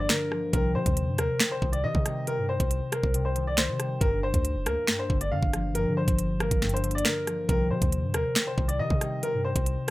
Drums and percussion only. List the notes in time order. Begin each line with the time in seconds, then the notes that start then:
0.09 finger snap, snare
0.32 cross-stick
0.53 kick, closed hi-hat
0.86 kick, closed hi-hat
0.97 closed hi-hat
1.18 cross-stick, closed hi-hat
1.40 finger snap, snare, closed hi-hat
1.62 kick
1.73 closed hi-hat
1.95 kick
2.06 cross-stick, closed hi-hat
2.27 closed hi-hat
2.60 kick, closed hi-hat
2.71 closed hi-hat
2.92 cross-stick, closed hi-hat
3.03 kick
3.14 closed hi-hat
3.36 closed hi-hat
3.57 finger snap, snare, closed hi-hat
3.80 cross-stick, closed hi-hat
4.01 kick, closed hi-hat
4.34 kick, closed hi-hat
4.45 closed hi-hat
4.66 cross-stick, closed hi-hat
4.87 finger snap, snare, closed hi-hat
5.10 kick
5.21 closed hi-hat
5.43 kick
5.53 cross-stick, closed hi-hat
5.75 closed hi-hat
6.08 kick, closed hi-hat
6.19 closed hi-hat
6.40 cross-stick, closed hi-hat
6.51 kick, closed hi-hat
6.62 snare, closed hi-hat
6.69 closed hi-hat
6.77 closed hi-hat
6.84 closed hi-hat
6.91 closed hi-hat
6.98 closed hi-hat
7.05 finger snap, snare, closed hi-hat
7.27 cross-stick, closed hi-hat
7.49 kick, closed hi-hat
7.82 kick, closed hi-hat
7.92 closed hi-hat
8.14 cross-stick, closed hi-hat
8.35 finger snap, snare, closed hi-hat
8.58 kick
8.69 closed hi-hat
8.90 kick
9.01 cross-stick, closed hi-hat
9.23 closed hi-hat
9.56 kick, closed hi-hat
9.66 closed hi-hat